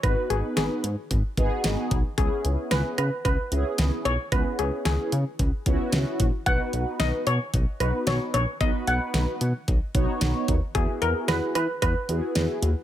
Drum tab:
HH |xxxxxxxx|xxxxxxxx|xxxxxxxx|xxxxxxxx|
SD |--o---o-|--o---o-|--o---o-|--o---o-|
BD |o---oo-o|o---o---|o---oo-o|o---o---|

HH |xxxxxxxx|xxxxxxxx|
SD |--o---o-|--o---o-|
BD |o---oo-o|o---o---|